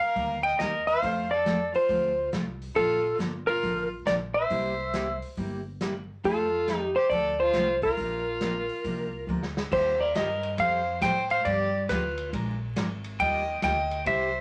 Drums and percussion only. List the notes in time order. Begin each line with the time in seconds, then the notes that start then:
0.01 open hi-hat
0.16 kick, open hi-hat
0.60 snare, closed hi-hat
0.87 open hi-hat
1.03 kick, open hi-hat
1.46 snare, closed hi-hat
1.75 open hi-hat
1.89 kick, open hi-hat
2.33 snare, closed hi-hat
2.62 open hi-hat
2.76 kick, open hi-hat
3.20 snare, closed hi-hat
3.48 open hi-hat
3.63 kick, open hi-hat
4.07 snare, closed hi-hat
4.50 kick, open hi-hat
4.94 snare, closed hi-hat
5.22 open hi-hat
5.37 kick, open hi-hat
5.81 snare, closed hi-hat
6.24 kick, open hi-hat
6.68 snare, closed hi-hat
7.11 kick, open hi-hat
7.54 snare, closed hi-hat
7.82 kick, open hi-hat
7.97 kick, open hi-hat
8.41 snare, closed hi-hat
8.69 open hi-hat
8.84 kick, open hi-hat
9.43 snare
9.57 snare
9.72 kick, crash
10.15 kick, snare, hi-hat pedal, ride
10.43 ride
10.58 kick, ride
11.01 kick, snare, hi-hat pedal, ride
11.30 ride
11.45 kick, ride
11.89 kick, snare, hi-hat pedal, ride
12.18 ride
12.33 kick, ride
12.76 kick, snare, hi-hat pedal, ride
13.04 ride
13.20 kick, ride
13.62 kick, snare, hi-hat pedal, ride
13.91 ride
14.06 kick, ride